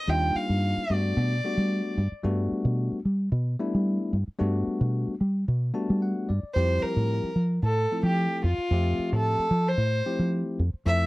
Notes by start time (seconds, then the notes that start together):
Already playing: D#5
0.07 D#2 G3 A#3 D4 D#4 F4 G5
0.35 F5, muted fingered electric bass stroke
0.50 G2
0.77 muted fingered electric bass stroke
0.90 G2 G3 A3 B3 D4 F#4 D5
1.17 B2
1.44 G3 A3 B3 D4 F#4
1.57 G3
1.98 G2
2.12 muted fingered electric bass stroke
2.24 G2 G3 A3 B3 D4 F#4
2.52 muted fingered electric bass stroke
2.65 B2
2.92 muted fingered electric bass stroke
3.05 G3
3.32 B2
3.59 G3 A3 B3 D4 E4
3.74 G3
4.13 G2
4.28 muted fingered electric bass stroke
4.39 G2 G3 A3 B3 D4 F#4
4.67 muted fingered electric bass stroke
4.81 B2
5.08 muted fingered electric bass stroke
5.21 G3
5.48 B2
5.74 G3 A3 B3 D4 F#4 A5
5.90 G3
6.02 F#5
6.29 G2 D5
6.43 muted fingered electric bass stroke
6.54 F2 F3 G3 C4 E4 G4 C5
6.82 A#4, muted fingered electric bass stroke
6.96 A2
7.23 muted fingered electric bass stroke
7.36 F3
7.63 A2 A4
7.91 F3 A3 C4 E4 A4
8.03 F3 G4
8.44 F2 F4
8.58 muted fingered electric bass stroke
8.71 F2 F3 A3 C4 G4 E5
8.99 muted fingered electric bass stroke
9.13 A2 A4
9.39 muted fingered electric bass stroke
9.51 F3
9.69 C5
9.78 A2
10.06 F3 A3 C4 E4 G4
10.19 F3
10.59 F2
10.74 muted fingered electric bass stroke
10.86 F2 F3 A3 C4 E4 A4 E5